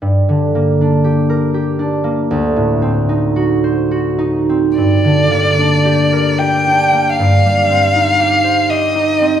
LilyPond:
<<
  \new Staff \with { instrumentName = "Violin" } { \time 3/4 \key g \minor \tempo 4 = 78 r2. | r2. | d''2 g''4 | f''2 ees''4 | }
  \new Staff \with { instrumentName = "Harp" } { \time 3/4 \key g \minor \tuplet 3/2 { g,8 d8 bes8 d'8 g'8 bes'8 g'8 d'8 bes8 } | \tuplet 3/2 { d,8 a,8 c'8 ees'8 fis'8 c''8 fis'8 ees'8 c'8 } | \tuplet 3/2 { g,8 d8 bes8 d'8 g'8 bes'8 g'8 d'8 bes8 } | \tuplet 3/2 { g,8 g8 c'8 ees'8 g'8 c''8 g'8 ees'8 c'8 } | }
>>